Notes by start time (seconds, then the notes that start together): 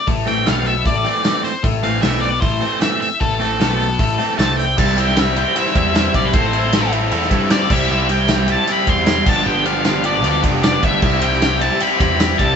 0.07 A1 A2 A3, kick, open hi-hat
0.26 A1 A2 E3 A3 C4 G5, open hi-hat
0.46 B1 B2 E3 A3 B3 C4 F5, snare, open hi-hat, tambourine
0.66 E5, open hi-hat
0.85 A1 A2 A3 D5, kick, open hi-hat
1.05 E3 A3 C4, open hi-hat
1.24 E3 A3 C4, snare, open hi-hat, tambourine
1.44 C5, open hi-hat
1.63 A1 A2 A3, kick, open hi-hat
1.82 A1 A2 E3 A3 C4 F5, open hi-hat
2.02 B1 B2 E3 A3 B3 C4 E5, snare, open hi-hat, tambourine
2.21 D5, open hi-hat
2.40 A1 A2 A3 C5, kick, open hi-hat
2.61 E3 A3 C4, open hi-hat
2.80 E3 A3 C4 E5, snare, open hi-hat, tambourine
3.01 E5, open hi-hat
3.20 A1 A2 A3 A4, kick, open hi-hat
3.40 A1 A2 E3 A3 C4, open hi-hat
3.60 B1 B2 E3 A3 B3 C4, snare, open hi-hat, tambourine
3.80 open hi-hat
3.99 A1 A2 A3, kick, open hi-hat
4.18 E3 A3 C4, open hi-hat
4.38 C2 C3 E3 A3 C4 A5, snare, open hi-hat, tambourine
4.58 G5, open hi-hat
4.76 C2 G3 C4 E4 G4 C5 E5 A5 B5, kick, crash
4.96 G3 C4 E4, ride
5.00 G5
5.08 snare
5.16 G3 C4 E4 E5, snare, ride, tambourine
5.36 G3 C4 E4 G5, ride
5.55 G3 C4 E4 E5, ride
5.66 snare
5.75 E2 G3 C4 E4 E5, kick, ride
5.95 G3 C4 E4 E5, snare, ride, tambourine
6.14 B1 G3 C4 E4 D5, kick, ride
6.25 B4
6.32 A1 C4 E4 A4 C5 A5, kick, ride
6.53 C4 E4 A4, ride
6.72 C4 E4 A4, snare, ride, tambourine
6.92 C4 E4 A4, ride
7.11 E2 C4 E4 A4, ride
7.22 snare
7.31 G2 C4 E4 A4, kick, ride
7.50 C4 E4 A4 D5, snare, ride, tambourine
7.70 C2 G3 C4 E4 G4 E5 G5, kick, crash
7.90 C2 G3 C4 E4 G4 E5
8.09 G3 C4 E4 G4 G5, ride
8.28 G3 C4 E4 G4, snare, ride, tambourine
8.48 G3 C4 E4 G4 A5, ride
8.67 G3 C4 E4 G4, ride
8.72 B5
8.87 E2 G3 C4 E4 G4 C6, kick, ride
9.06 G3 C4 E4 G4, snare, ride, tambourine
9.26 G1 F3 B3 D4 G4 D5 F5 A5, kick, crash
9.45 G1 F3 B3 D4 G4 G5
9.65 F3 B3 D4 G4 F5, ride
9.84 F3 B3 D4 G4, snare, ride, tambourine
10.04 F3 B3 D4 G4 D5, ride
10.23 D2 F3 B3 D4 G4, ride
10.43 F1 F3 B3 D4 G4, kick, ride
10.63 F3 B3 D4 G4 D5, snare, ride, tambourine
10.82 G1 F3 B3 D4 G4 E5, kick, ride
11.01 C2 G3 C4 E4 G4 E5, kick, crash
11.05 C5 B5
11.21 G3 C4 E4 G4 G5, ride
11.32 snare
11.41 G3 C4 E4 G4, snare, ride, tambourine
11.60 G3 C4 E4 G4 A5, ride
11.80 G3 C4 E4 G4 B5, ride
12.00 E2 G3 C4 E4 G4 B5, kick, ride
12.19 G3 C4 E4 G4, snare, ride, tambourine
12.39 C2 G3 C4 E4 G4 A5, kick, ride